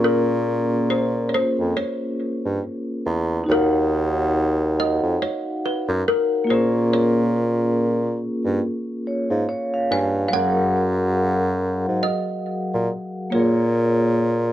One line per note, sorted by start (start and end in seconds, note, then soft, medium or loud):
0.00 1.35 A#2 loud
0.00 2.99 A#3 medium
0.00 3.04 C#4 medium
0.00 3.00 F4 medium
0.00 3.01 G#4 medium
0.00 3.02 A#4 medium
0.04 0.93 A#4 loud
0.90 1.28 C5 medium
1.29 1.34 C#5 medium
1.34 1.78 C5 loud
1.59 1.75 F2 medium
1.77 3.01 C#5 medium
2.45 2.60 G2 medium
3.06 3.43 E2 medium
3.44 6.42 D#4 medium
3.44 6.43 F#4 medium
3.49 4.97 D#2 loud
3.49 4.82 A#4 loud
3.49 6.44 C#5 medium
3.49 6.45 F5 medium
3.54 6.47 F#5 medium
4.80 5.22 D#5 loud
5.02 5.18 F2 medium
5.22 5.65 C#5 loud
5.66 5.84 B4 medium
5.88 6.03 F#2 loud
6.08 6.50 A#4 medium
6.44 9.42 A#3 medium
6.44 9.43 F4 medium
6.49 8.22 A#2 loud
6.49 9.44 G#4 medium
6.49 9.03 A#4 medium
6.49 6.93 C5 medium
6.54 9.04 C#4 medium
6.93 9.45 C#5 loud
8.45 8.60 G2 medium
9.07 9.29 C#5 medium
9.30 9.46 G#2 medium
9.30 9.47 F5 medium
9.49 9.72 C#5 medium
9.74 9.90 F5 medium
9.91 10.28 G2 medium
9.91 10.27 F5 loud
9.91 10.14 G#5 medium
10.16 10.56 F5 medium
10.28 13.27 F#3 medium
10.28 13.29 F#4 medium
10.28 10.34 F5 medium
10.33 11.83 F#2 loud
10.33 13.30 G#4 medium
10.33 13.31 A#4 medium
10.33 12.10 F#5 loud
10.39 13.32 F#5 medium
11.88 12.03 G#2 medium
12.03 13.36 D#5 medium
12.74 12.89 A#2 medium
13.30 14.53 A#3 medium
13.30 14.53 F4 medium
13.30 14.53 C#5 medium
13.35 14.53 A#2 loud
13.35 14.53 G#4 medium
13.35 14.53 A#4 medium
13.40 14.53 C#5 medium